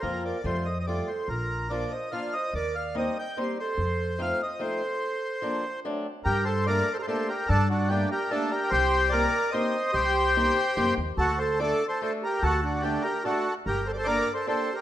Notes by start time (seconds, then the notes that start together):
0.00 F2 F3 A#3 C4 F4 A#4
0.25 A#4 D5
0.43 F2 G3 A3 C4 F4 A4 C5
0.65 C5 D#5
0.80 C5 D#5
0.86 G3 A3 C4 F4 A4 D5
1.07 A4 C5
1.28 A#1 F4 A#4
1.70 F3 A#3 D4 F4 A#4 D5
1.91 C5 D#5
2.11 F3 A#3 D4 F4 D5 F5
2.33 C5 D#5
2.53 D#2 A#4 D5
2.75 D5 F5
2.95 G3 A#3 C4 D#4 D#5
2.99 C5
3.19 D#5 G5
3.37 G3 A#3 C4 D#4 C5
3.41 G4
3.59 A4 C5
3.78 F2
4.19 F3 A3 C4 D#4 C5 F5
4.42 C5 D#5
4.59 F3 A3 C4 D#4 C5
4.64 A4
5.42 F3 A#3 C4 D4
5.85 F#3 A3 C4 D4
6.24 G2 G4 A#4
6.45 A4 C5
6.66 A3 A#3 D4 G4 A#4 D5
6.92 A4 C5
6.98 G4 A4 A#4 C5
7.03 A4
7.07 A3 A#3 D4 G4 A4 C5
7.28 G4 A#4
7.48 G2 D4 A4
7.70 D4 F#4
7.88 A3 A#3 D4 G4
8.11 G4 A#4
8.31 A3 A#3 D4 G4 A4
8.51 G4 A#4
8.70 C2 G4 C5
9.09 A#3 C4 D#4 A#4 D5
9.14 G4
9.51 A#3 C4 D#4 G4 C5 D#5
9.93 C2 G4 C5
10.36 A#3 C4 D#4 G4
10.77 F#2 A#3 C4 D#4 G4
10.97 D#2
11.17 D2 F#4 A4
11.38 A4 C5
11.59 A3 D4 F#4 A4 D5
11.86 A4 C5
11.90 A4
12.01 A3 D4 F#4 A4 C5
12.21 G4 A#4
12.26 G4
12.42 D2 F#4 A4
12.62 D4 F#4
12.81 A3 D4 F#4 G4 A4
13.02 G4 A#4
13.24 A3 D4 F#4 A4
13.66 G1 G4 A#4
13.86 A4 C5
13.93 A#4 C5 D5
13.98 A4
14.05 A#3 D4 G4 A4 A#4 D5
14.33 A4 C5
14.47 A#3 D4 G4 A4 C5
14.73 G4 A#4